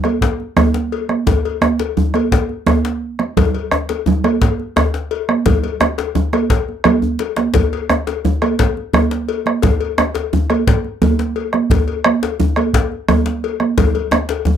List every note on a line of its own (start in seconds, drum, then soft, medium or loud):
0.04 bombo rim medium
0.04 cowbell soft
0.04 high conga medium
0.21 bombo low medium
0.21 cowbell soft
0.21 djembe slap medium
0.40 high conga soft
0.57 bombo rim medium
0.57 cowbell soft
0.57 djembe slap soft
0.57 high conga medium
0.57 djembe tone medium
0.57 low conga medium
0.57 djembe bass medium
0.74 djembe slap medium
0.92 cowbell soft
1.09 bombo rim medium
1.09 high conga soft
1.27 bombo low medium
1.27 cowbell medium
1.27 djembe slap medium
1.27 low conga medium
1.27 djembe bass medium
1.45 cowbell soft
1.61 bombo rim medium
1.61 high conga medium
1.61 djembe tone medium
1.79 cowbell soft
1.79 djembe slap medium
1.79 high conga soft
1.97 low conga medium
1.97 djembe bass medium
2.14 bombo rim medium
2.14 cowbell soft
2.14 high conga medium
2.32 bombo low medium
2.32 cowbell soft
2.32 djembe slap medium
2.49 high conga soft
2.66 bombo rim medium
2.66 cowbell soft
2.66 djembe slap soft
2.66 high conga medium
2.66 djembe tone medium
2.66 low conga medium
2.66 djembe bass medium
2.85 djembe slap medium
3.19 bombo rim medium
3.19 high conga medium
3.37 bombo low medium
3.37 cowbell medium
3.37 djembe slap medium
3.37 low conga medium
3.37 djembe bass medium
3.54 cowbell soft
3.71 bombo rim medium
3.71 djembe tone medium
3.89 cowbell soft
3.89 djembe slap medium
3.89 high conga soft
4.06 djembe bass medium
4.06 low conga medium
4.24 bombo rim medium
4.24 cowbell soft
4.24 high conga medium
4.41 bombo low medium
4.41 cowbell medium
4.41 djembe slap medium
4.59 high conga soft
4.76 bombo rim medium
4.76 cowbell medium
4.76 djembe slap soft
4.76 djembe tone medium
4.76 high conga medium
4.76 djembe bass medium
4.94 djembe slap soft
5.11 cowbell medium
5.29 bombo rim medium
5.29 high conga medium
5.46 bombo low medium
5.46 cowbell medium
5.46 djembe slap medium
5.46 djembe bass medium
5.46 low conga medium
5.64 cowbell medium
5.64 high conga soft
5.80 bombo rim loud
5.80 djembe tone medium
5.80 high conga medium
5.98 cowbell soft
5.98 djembe slap medium
5.98 high conga soft
6.15 bombo rim soft
6.15 djembe bass medium
6.15 low conga medium
6.33 bombo rim medium
6.33 cowbell soft
6.33 high conga medium
6.50 bombo rim soft
6.50 bombo low medium
6.50 cowbell medium
6.50 djembe slap medium
6.68 high conga soft
6.84 bombo rim medium
6.84 cowbell medium
6.84 high conga medium
6.84 djembe bass soft
6.84 low conga medium
7.02 djembe bass soft
7.19 cowbell medium
7.19 djembe slap soft
7.19 high conga soft
7.36 bombo rim medium
7.36 djembe slap medium
7.36 high conga medium
7.54 bombo low medium
7.54 cowbell medium
7.54 djembe slap medium
7.54 djembe bass medium
7.54 low conga medium
7.73 cowbell medium
7.89 bombo rim medium
7.89 djembe tone medium
7.89 high conga medium
8.07 cowbell soft
8.07 djembe slap medium
8.07 high conga soft
8.25 djembe bass medium
8.25 low conga medium
8.42 bombo rim medium
8.42 cowbell medium
8.42 high conga medium
8.59 bombo low medium
8.59 cowbell medium
8.59 djembe slap medium
8.77 high conga soft
8.93 bombo rim medium
8.93 cowbell medium
8.93 high conga medium
8.93 djembe bass medium
8.93 low conga medium
9.11 djembe slap medium
9.29 cowbell medium
9.46 bombo rim medium
9.46 high conga medium
9.62 bombo low medium
9.62 cowbell medium
9.62 djembe slap medium
9.62 djembe bass medium
9.62 low conga medium
9.80 cowbell soft
9.98 bombo rim loud
9.98 djembe tone medium
9.98 high conga medium
10.15 cowbell soft
10.15 djembe slap medium
10.15 high conga soft
10.33 low conga medium
10.33 djembe bass medium
10.50 bombo rim medium
10.50 cowbell soft
10.50 high conga medium
10.67 bombo low loud
10.67 cowbell soft
10.67 djembe slap medium
10.84 high conga soft
11.02 cowbell soft
11.02 djembe slap soft
11.02 high conga medium
11.02 djembe tone medium
11.02 low conga medium
11.02 djembe bass medium
11.19 djembe slap medium
11.36 cowbell soft
11.53 bombo rim medium
11.53 high conga medium
11.70 bombo low medium
11.70 cowbell medium
11.70 djembe slap medium
11.70 low conga medium
11.70 djembe bass medium
11.88 cowbell soft
12.04 bombo rim loud
12.04 high conga medium
12.23 cowbell soft
12.23 djembe slap medium
12.23 high conga soft
12.40 low conga medium
12.40 djembe bass medium
12.56 bombo rim medium
12.56 cowbell soft
12.56 high conga soft
12.73 bombo low medium
12.73 cowbell soft
12.73 djembe slap medium
12.92 high conga soft
13.09 bombo rim medium
13.09 cowbell soft
13.09 djembe slap soft
13.09 high conga medium
13.09 djembe tone medium
13.09 low conga medium
13.09 djembe bass medium
13.26 djembe slap medium
13.44 cowbell soft
13.60 bombo rim medium
13.60 high conga medium
13.78 bombo rim soft
13.78 bombo low medium
13.78 cowbell medium
13.78 djembe slap medium
13.78 djembe bass medium
13.78 low conga medium
13.95 cowbell soft
13.95 djembe slap soft
13.95 high conga soft
14.11 bombo rim medium
14.11 djembe tone medium
14.11 high conga medium
14.29 cowbell soft
14.29 djembe slap medium
14.45 djembe slap soft
14.45 high conga soft
14.45 djembe bass medium
14.45 low conga medium